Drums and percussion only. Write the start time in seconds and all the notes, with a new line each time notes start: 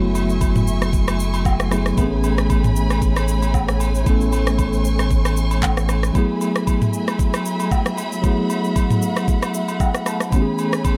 0.15 high agogo, shaker
0.29 shaker
0.41 kick, high agogo, shaker
0.56 mid tom, shaker
0.67 shaker
0.82 cross-stick, high agogo, shaker
0.93 kick, shaker
1.08 cross-stick, high agogo, shaker
1.20 shaker
1.34 high agogo, shaker
1.45 kick, low woodblock, shaker
1.60 cross-stick, shaker
1.71 cross-stick, high agogo, shaker
1.86 cross-stick, shaker
1.98 kick, high agogo, shaker
2.24 high agogo, shaker
2.38 cross-stick, shaker
2.50 kick, high agogo, shaker
2.64 mid tom, shaker
2.76 shaker
2.90 cross-stick, high agogo, shaker
3.02 kick, shaker
3.16 cross-stick, high agogo, shaker
3.28 shaker
3.42 high agogo, shaker
3.54 kick, low woodblock, shaker
3.68 cross-stick, shaker
3.80 high agogo, shaker
3.95 shaker
4.06 kick, high agogo, shaker
4.21 shaker
4.32 high agogo, shaker
4.47 cross-stick, shaker
4.58 kick, high agogo, shaker
4.73 shaker
4.85 shaker
4.99 cross-stick, high agogo, shaker
5.11 kick, shaker
5.25 cross-stick, high agogo, shaker
5.37 shaker
5.51 high agogo, shaker
5.63 kick, clap, low woodblock, shaker
5.77 cross-stick, shaker
5.89 cross-stick, high agogo, shaker
6.03 cross-stick, shaker
6.15 kick, high agogo, shaker
6.41 high agogo, shaker
6.56 cross-stick, shaker
6.67 kick, high agogo, shaker
6.82 mid tom, shaker
6.93 shaker
7.08 cross-stick, high agogo, shaker
7.19 kick, shaker
7.34 cross-stick, high agogo, shaker
7.46 shaker
7.60 high agogo, shaker
7.71 kick, low woodblock, shaker
7.86 cross-stick, shaker
7.97 high agogo, shaker
8.12 shaker
8.24 kick, high agogo, shaker
8.50 high agogo, shaker
8.64 shaker
8.76 kick, high agogo, shaker
8.90 mid tom, shaker
9.02 shaker
9.16 cross-stick, high agogo, shaker
9.28 kick, shaker
9.42 cross-stick, high agogo, shaker
9.54 shaker
9.68 high agogo, shaker
9.80 kick, low woodblock, shaker
9.95 cross-stick, shaker
10.06 cross-stick, high agogo, shaker
10.20 cross-stick, shaker
10.32 kick, high agogo, shaker
10.58 high agogo, shaker
10.73 cross-stick, shaker
10.85 kick, high agogo, shaker